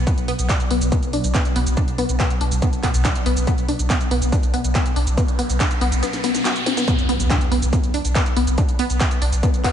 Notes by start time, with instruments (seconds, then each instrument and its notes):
Already playing: synth drone B2 F#3
0.07 synth arpeggio sound B3, kick, closed hi-hat, shaker
0.18 sub bass B1, closed hi-hat, shaker
0.28 synth arpeggio sound B3, open hi-hat
0.39 sub bass B1, closed hi-hat, shaker
0.49 synth arpeggio sound D4, kick, clap, closed hi-hat, shaker
0.60 closed hi-hat, shaker
0.71 sub bass B1, synth arpeggio sound B3, open hi-hat
0.81 sub bass B1, closed hi-hat, shaker
0.92 synth arpeggio sound B3, kick, closed hi-hat, shaker
1.03 sub bass B1, closed hi-hat, shaker
1.13 synth arpeggio sound D4, open hi-hat
1.24 sub bass B1, closed hi-hat, shaker
1.34 synth arpeggio sound B3, kick, clap, closed hi-hat, shaker
1.45 closed hi-hat, shaker
1.56 sub bass B1, synth arpeggio sound B3, open hi-hat
1.67 sub bass B1, closed hi-hat, shaker
1.77 synth arpeggio sound D4, kick, closed hi-hat, shaker
1.88 sub bass B1, closed hi-hat, shaker
1.98 synth arpeggio sound B3, open hi-hat
2.09 sub bass B1, closed hi-hat, shaker
2.20 synth arpeggio sound B3, kick, clap, closed hi-hat, shaker
2.30 closed hi-hat, shaker
2.41 sub bass B1, synth arpeggio sound D4, open hi-hat
2.52 sub bass B1, closed hi-hat, shaker
2.62 synth arpeggio sound B3, kick, closed hi-hat, shaker
2.73 sub bass B1, closed hi-hat, shaker
2.83 synth arpeggio sound B3, kick, clap, open hi-hat
2.94 sub bass B1, closed hi-hat, shaker
3.05 synth arpeggio sound D4, kick, clap, closed hi-hat, shaker
3.16 closed hi-hat, shaker
3.26 sub bass B1, synth arpeggio sound B3, open hi-hat
3.37 sub bass B1, closed hi-hat, shaker
3.47 synth arpeggio sound B3, kick, closed hi-hat, riser, shaker
3.58 sub bass B1, closed hi-hat, shaker
3.69 synth arpeggio sound D4, open hi-hat
3.79 sub bass B1, closed hi-hat, shaker
3.90 synth arpeggio sound B3, kick, clap, closed hi-hat, shaker
4.01 closed hi-hat, shaker
4.11 sub bass B1, synth arpeggio sound B3, open hi-hat
4.22 sub bass B1, closed hi-hat, shaker
4.32 synth arpeggio sound D4, kick, closed hi-hat, shaker
4.43 sub bass B1, closed hi-hat, shaker
4.54 synth arpeggio sound B3, open hi-hat
4.64 sub bass B1, closed hi-hat, shaker
4.75 synth arpeggio sound B3, kick, clap, closed hi-hat, shaker
4.86 closed hi-hat, shaker
4.96 sub bass B1, synth arpeggio sound D4, open hi-hat
5.07 sub bass B1, closed hi-hat, shaker
5.17 synth arpeggio sound B3, kick, closed hi-hat, shaker
5.28 sub bass B1, closed hi-hat, shaker
5.39 synth arpeggio sound B3, open hi-hat
5.50 sub bass B1, closed hi-hat, shaker
5.60 synth arpeggio sound D4, kick, clap, closed hi-hat, shaker
5.71 closed hi-hat, shaker
5.81 sub bass B1, synth arpeggio sound B3, open hi-hat
5.92 sub bass B1, closed hi-hat, shaker
6.03 synth arpeggio sound B3, snare, closed hi-hat, shaker
6.13 snare, closed hi-hat, shaker
6.24 synth arpeggio sound B3, snare, open hi-hat
6.35 snare, closed hi-hat, shaker
6.45 synth arpeggio sound F#4, snare, clap, closed hi-hat, shaker
6.56 closed hi-hat, shaker
6.66 synth arpeggio sound C4, snare, open hi-hat
6.77 synth arpeggio sound B3, snare, closed hi-hat, shaker
6.88 synth arpeggio sound B3, kick, closed hi-hat, impact, shaker
6.98 sub bass B1, closed hi-hat, shaker
7.09 synth arpeggio sound B3, open hi-hat
7.20 sub bass B1, closed hi-hat, shaker
7.30 synth arpeggio sound D4, kick, clap, closed hi-hat, shaker
7.41 closed hi-hat, shaker
7.51 sub bass B1, synth arpeggio sound B3, open hi-hat
7.62 sub bass B1, closed hi-hat, shaker
7.73 synth arpeggio sound B3, kick, closed hi-hat, shaker
7.84 sub bass B1, closed hi-hat, shaker
7.94 synth arpeggio sound D4, open hi-hat
8.05 sub bass B1, closed hi-hat, shaker
8.15 synth arpeggio sound B3, kick, clap, closed hi-hat, shaker
8.26 closed hi-hat, shaker
8.37 sub bass B1, synth arpeggio sound B3, open hi-hat
8.47 sub bass B1, closed hi-hat, shaker
8.58 synth arpeggio sound D4, kick, closed hi-hat, shaker
8.69 sub bass B1, closed hi-hat, shaker
8.79 synth arpeggio sound B3, open hi-hat
8.90 sub bass B1, closed hi-hat, shaker
9.00 synth arpeggio sound B3, kick, clap, closed hi-hat, shaker
9.11 closed hi-hat, shaker
9.22 sub bass B1, synth arpeggio sound D4, open hi-hat
9.32 sub bass B1, closed hi-hat, shaker
9.43 synth arpeggio sound B3, kick, closed hi-hat, shaker
9.54 sub bass B1, closed hi-hat, shaker
9.64 synth arpeggio sound B3, kick, clap, open hi-hat